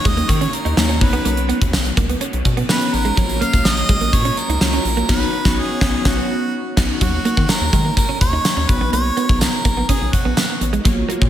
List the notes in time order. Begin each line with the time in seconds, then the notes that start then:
Already playing: D#3 A#3 C#4 D#4 F#4 C#5
0.05 D#2 G#3 D#5, kick, closed hi-hat
0.17 A#3, closed hi-hat
0.29 D#3 A#3 D#4 C#5, kick, closed hi-hat
0.41 C#4, closed hi-hat
0.53 A#4, muted clean electric guitar stroke, closed hi-hat
0.65 D#2 D#4, closed hi-hat
0.77 D#2 D#3 A#3 C#4 D#4 F#4 A#4 C#5, snare, tambourine
0.89 C#4, closed hi-hat
1.01 B1 B2 F#3 B3 C#4 D#4 F#4 B4 C#5, muted clean electric guitar stroke, kick, open hi-hat
1.13 B3, closed hi-hat
1.25 B1 A#3, closed hi-hat
1.37 closed hi-hat
1.49 F#3 B3, closed hi-hat
1.61 D#2, muted clean electric guitar stroke, kick, closed hi-hat
1.73 B1, muted clean electric guitar stroke, snare, tambourine
1.85 closed hi-hat
1.97 C#2 A#3, kick, closed hi-hat
2.09 B3, closed hi-hat
2.21 B2 F#3 B3 C#4, closed hi-hat
2.33 B1, muted clean electric guitar stroke, closed hi-hat
2.45 B2, kick, closed hi-hat
2.57 B3, closed hi-hat
2.69 B2 F#3 A#3 B3 C#4 D#4 F#4 B4 C#5, snare, tambourine
2.81 closed hi-hat
2.93 A1 A#4, muted clean electric guitar stroke, open hi-hat
3.05 G#3, closed hi-hat
3.17 A#1 F#2 C#3 F#3 A#3 C#4 F4 F#4 C#5, kick, closed hi-hat
3.29 closed hi-hat
3.41 C#3 F#3 A#3 F5, closed hi-hat
3.53 C#2, muted clean electric guitar stroke, kick, closed hi-hat
3.65 A#1 D#5, muted clean electric guitar stroke, snare, tambourine
3.77 closed hi-hat
3.89 A#1 G#3, kick, closed hi-hat
4.01 A#3, closed hi-hat
4.13 F#2 A#2 C#3 F#3 C#5, kick, closed hi-hat
4.25 C#4, closed hi-hat
4.37 A#4, muted clean electric guitar stroke, closed hi-hat
4.49 C#2 D#4, closed hi-hat
4.61 C#2 F#2 C#3 F#3 A#3 C#4 F4 F#4 C#5, snare, tambourine
4.73 C#4, closed hi-hat
4.85 A#1, muted clean electric guitar stroke, open hi-hat
4.97 A#3, closed hi-hat
5.08 B1 B2 F#3 B3 C#4 D#4 F#4 B4 C#5, kick, snare, crash
5.44 B1 B2 F#3 B3 C#4 D#4 F#4 C#5, kick, snare
5.59 G#4
5.81 B1 B2 F#3 B3 C#4 D#4 F#4 C#5, kick, snare
6.05 B1 B2 F#3 B3 C#4 D#4 F#4, kick, snare
6.77 B1 B2 F#3 B3 C#4 D#4 F#4, kick, snare, crash
7.01 D#2 F#3 A#3 D#4 F#4 C#5, kick, closed hi-hat
7.25 A#3 D#4 F#4 C#5, closed hi-hat
7.37 D#3, muted clean electric guitar stroke, kick
7.49 A#4, muted clean electric guitar stroke, snare, closed hi-hat, tambourine
7.61 D#2
7.73 D#3 G#3, kick, closed hi-hat
7.85 A#3
7.97 A#4, kick, closed hi-hat
8.09 C#4
8.21 D#2 C#5, muted clean electric guitar stroke, kick, closed hi-hat
8.33 D#4
8.45 snare, closed hi-hat, tambourine
8.57 D#2 C#4
8.69 B1 B3 D#4 F#4 B4 C#5, muted clean electric guitar stroke, kick, closed hi-hat
8.81 A#1 B3
8.93 B1 A#3 C#5, closed hi-hat
9.17 B3 D#4 F#4 C#5, closed hi-hat
9.29 B1, muted clean electric guitar stroke, kick
9.40 A#4, muted clean electric guitar stroke, snare, closed hi-hat, tambourine
9.65 A#1 A#3, kick, closed hi-hat
9.77 B3
9.88 C#4 G#4, kick, closed hi-hat
10.01 B1, muted clean electric guitar stroke
10.13 F#4, kick, closed hi-hat
10.25 A#1 B3
10.37 A#3, snare, closed hi-hat, tambourine
10.61 A1 B3 D#4 F#4 C#5, muted clean electric guitar stroke, closed hi-hat
10.73 G#3, closed hi-hat
10.85 A#1 F#3 A#3 F4 F#4 C#5, kick, closed hi-hat
11.09 A#3 F4 F#4 C#5, closed hi-hat
11.21 A#2, muted clean electric guitar stroke, kick